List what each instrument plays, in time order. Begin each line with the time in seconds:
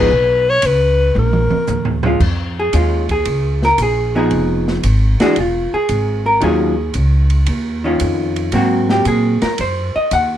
Already playing: hollow-body jazz guitar G#4, alto saxophone B4
0.11 upright bass B1
0.50 alto saxophone C#5
0.62 upright bass C#2, hi-hat pedal, ride
0.66 alto saxophone B4
1.15 upright bass A#1, alto saxophone A#4, high tom
1.33 mid tom
1.50 muted upright bass stroke, mid tom
1.67 upright bass D2, floor tom, hi-hat pedal
1.85 floor tom
2.03 hollow-body jazz guitar G#3 C#4 F4, floor tom
2.20 upright bass F2, kick, crash
2.59 hollow-body jazz guitar G#4
2.73 upright bass D#2, hollow-body jazz guitar G#3 C#4 F4, hi-hat pedal, ride
3.09 hollow-body jazz guitar G#4, kick, ride
3.25 upright bass C#2, ride
3.62 hollow-body jazz guitar A#4, snare
3.78 upright bass A#1, hi-hat pedal, ride
3.82 hollow-body jazz guitar G#4
4.15 hollow-body jazz guitar F3 B3 D#4 G#4
4.31 upright bass F1, ride
4.68 snare
4.83 upright bass G#1, hi-hat pedal, ride
5.20 hollow-body jazz guitar E3 G#3 D4 F#4 G#4, snare, ride
5.36 upright bass E1, ride
5.40 hollow-body jazz guitar F4
5.73 hollow-body jazz guitar G#4, muted upright bass stroke
5.89 upright bass G#1, hi-hat pedal, ride
6.26 hollow-body jazz guitar A#4
6.41 upright bass D#2, hollow-body jazz guitar D#3 F#3 C#4 F4 G#4, ride
6.94 upright bass C#2, hi-hat pedal, ride
7.30 ride
7.46 upright bass D#2, ride
7.84 hollow-body jazz guitar D#3 C#4 F4
8.00 upright bass F2, hi-hat pedal, ride
8.36 ride
8.52 upright bass G#2, hollow-body jazz guitar F#3 A#3 C4 F#4, ride
8.89 hollow-body jazz guitar G4, snare
9.05 upright bass A#2, hollow-body jazz guitar G#4, hi-hat pedal, ride
9.42 hollow-body jazz guitar A#4, muted upright bass stroke, snare, ride
9.58 upright bass F#2, hollow-body jazz guitar C5, ride
9.96 hollow-body jazz guitar D#5, muted upright bass stroke
10.11 upright bass D#2, hollow-body jazz guitar F#5, hi-hat pedal, ride